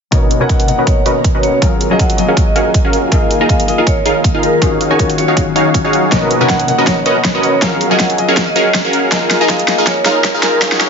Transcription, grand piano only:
0.11 B2 A#3 D#4 C#5
0.40 B2 A#3 D#4 F#5
0.67 B2 A#3 D#4 F#5
1.61 F#3 F4 G#4 A#4
1.90 F#3 F4 G#4 D#5
2.17 F#3 F4 G#4 D#5
3.11 A#3 F4 G#4 D#5
3.40 A#3 F4 G#4 D#5
3.67 A#3 F4 G#4 D#5
4.61 D#3 C#4 F4 F#4 G#4
4.90 D#3 C#4 F4 F#4 C#5
5.17 D#3 C#4 F4 F#4 C#5
6.11 B2 A#3 D#4 C#5
6.40 B2 A#3 D#4 F#5
6.67 B2 A#3 D#4 F#5
7.61 F#3 F4 G#4 A#4
7.90 F#3 F4 G#4 D#5
8.17 F#3 F4 G#4 D#5
9.11 A#3 F4 G#4 D#5
9.40 A#3 F4 G#4 D#5
9.67 A#3 F4 G#4 D#5
10.61 D#3 C#4 F4 F#4 G#4

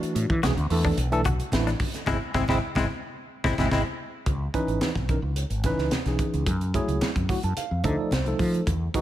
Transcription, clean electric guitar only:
0.43 F#4
0.85 D4
1.26 F#4
1.67 D4
2.07 G#3 C4 E4
2.35 G#3 C4 E4
2.49 G#3 C4 E4
2.77 G#3 C4 E4
3.44 G#3 C4 E4
3.58 G#3 C4 E4
3.72 G#3 C4 E4

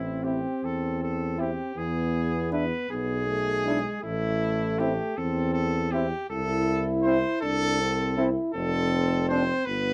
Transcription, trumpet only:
Already playing: E4
0.23 G4
0.64 A4
1.02 A4
1.40 G4
1.77 G#4
2.52 B4
2.91 G#4
4.03 E4
4.79 G4
5.17 A4
5.53 A4
5.92 G4
6.30 A4
7.03 C5
7.41 A4
8.54 A4
9.29 C5
9.65 B4

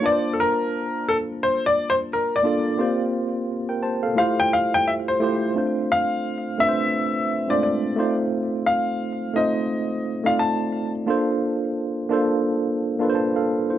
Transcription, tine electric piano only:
0.01 A#3 D4 F4 A5
0.05 B4
0.12 C5
2.43 A#3 D4 F4 A4
2.47 D5
2.77 A#3 C4 F4 G4 C5
3.69 A#4 G5
3.83 C5 A5
4.03 A4 F5
4.15 A3 E4 F4 G4
4.20 C5
5.20 A3 E4 F4 G4
5.24 C5
5.54 A3 C4 D4 F4 C5
6.58 A3 C4 D4 F4 B4
6.68 C5
7.47 G#3 C4 D4 F4 C5
7.54 A3
7.96 A3 C4 D#4 F4 C5
9.34 A3 C4 D#4 F4 C5
10.24 A3 C4 D#4 F4
10.28 D5
11.06 A#3 D4 F4 A4 C5
12.09 A#3 D4 F4 A4
12.13 C5
12.99 A#3 D4 F4 A4 B4
13.10 C5
13.15 C5 A5
13.36 A4 F5
13.70 E4 C5

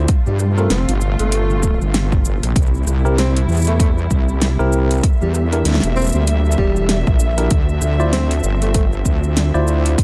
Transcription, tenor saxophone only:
0.27 G3
0.39 G3
0.58 A3
0.70 C4
1.19 A3
3.18 C4
3.67 A3
3.80 A3
5.21 G3
5.34 G3
5.96 C4
6.14 C4
6.58 G3
8.13 C4
8.62 A3
8.74 A3

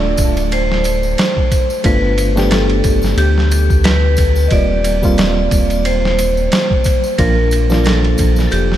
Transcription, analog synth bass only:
Already playing: D1
0.19 D1
1.85 G1
2.85 G1
3.17 D2
4.51 D#1
5.52 D#1
7.19 A#1
8.19 A#1
8.52 F1

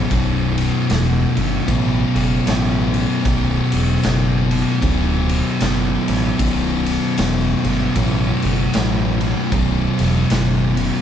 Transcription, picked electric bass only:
0.11 B0
0.90 E1
1.37 G1
1.68 A1
2.15 F#1
2.47 A1
3.25 B0
3.73 E1
4.05 F#1
4.82 D1
5.61 F#1
6.08 A1
6.39 B0
7.18 E1
7.64 G1
7.96 A1
8.44 F#1
8.75 A1
9.52 B0
9.99 E1
10.31 F#1

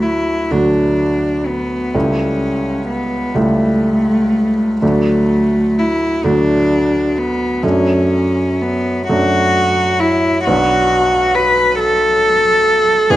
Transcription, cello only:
0.02 E4
0.51 D4
1.47 B3
1.95 C#4
2.88 B3
3.36 A3
4.82 A3
5.79 E4
6.24 D4
7.18 B3
7.63 C#4
8.62 B3
9.08 F#4
10.00 E4
10.45 F#4
11.35 B4
11.79 A4
13.10 G#4

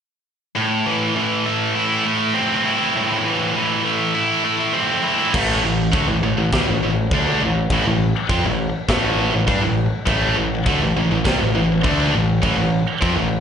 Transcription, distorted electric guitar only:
0.56 A2
0.86 E3
1.16 E3
1.46 A3
1.75 E4
2.05 A3
2.34 C4
2.65 E4
2.95 A2
3.25 E3
3.56 E3
3.85 A3
4.14 E4
4.44 A3
4.73 C4
5.03 E4
5.34 A2 E3 A3
5.63 A2 E3
5.92 D3 A3
6.07 A2 E3
6.23 A2 E3
6.37 A2 E3
6.53 C3 G3
6.67 A2 E3
6.83 A2 E3
7.13 D3 A3 D4
7.42 A2 E3
7.71 A2 E3
7.86 A2 E3
8.30 F3 C4
8.45 A2 E3
8.89 A2 E3 A3
9.33 A2 E3
9.47 G3 D4
9.61 A2 E3
10.06 A2 E3 A3
10.36 A2 E3
10.66 D3 A3
10.81 A2 E3
10.97 A2 E3
11.11 A2 E3
11.25 C3 G3
11.40 A2 E3
11.55 A2 E3
11.84 D3 A3 D4
12.13 A2 E3
12.42 A2 E3
12.57 A2 E3
13.02 F3 C4
13.17 A2 E3

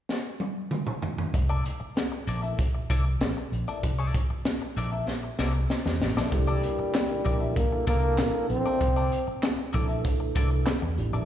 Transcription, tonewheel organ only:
6.32 A#2 D3 E3 A3
6.63 A#2 D3 E3 A#3
7.10 A#2 D3 E3 A#3
7.25 A#2 D3 E3 A#3
7.72 A#2 D3 E3 A4
9.74 A#2 D3 E3 A3
10.98 A#2 D3 E3 G3

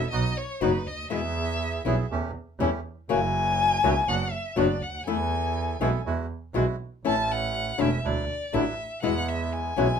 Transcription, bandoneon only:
0.12 B3 D#4 F#4
0.62 B3 D#4 F#4
1.11 B3 E4 G#4
1.86 B3 E4 G#4
2.11 A3 C#4 G4
2.60 A3 C#4 G4
3.09 A#3 E4 F#4
3.84 A#3 E4 F#4
4.08 B3 D4 F#4
4.57 B3 D4 F#4
5.07 B3 E4 A4
5.81 B3 E4 A4
6.06 G#3 E4 F#4
6.55 G#3 E4 F#4
7.05 A3 C#4 E4
7.79 A3 C#4 E4
8.04 F#3 D4 E4
8.54 F#3 D4 E4
9.03 G#3 B3 E4
9.77 G#3 B3 E4

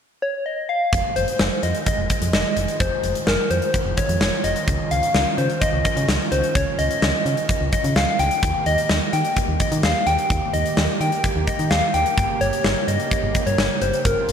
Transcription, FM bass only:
0.93 F1
1.16 F1
1.40 F1
1.63 F2
1.98 F1
2.22 F2
2.33 F1
2.57 F1
2.80 F1
3.04 F1
3.27 F1
3.51 F2
3.86 F1
4.09 F2
4.21 F1
4.44 F1
4.68 C#2
4.91 C#2
5.15 C#2
5.38 C#3
5.73 C#2
5.97 C#3
6.08 C#2
6.32 C#2
6.55 C#2
6.79 C#2
7.02 C#2
7.26 C#3
7.61 C#2
7.84 C#3
7.96 C#2
8.19 C#2
8.43 D#2
8.66 D#2
8.90 D#2
9.13 D#3
9.48 D#2
9.72 D#3
9.83 D#2
10.07 D#2
10.30 D#2
10.54 D#2
10.77 D#2
11.01 D#3
11.36 D#2
11.59 D#3
11.71 D#2
11.94 D#2
12.18 G1
12.41 G1
12.64 G1
12.88 G2
13.23 G1
13.46 G2
13.58 G1
13.82 G1
14.05 G1
14.29 G1

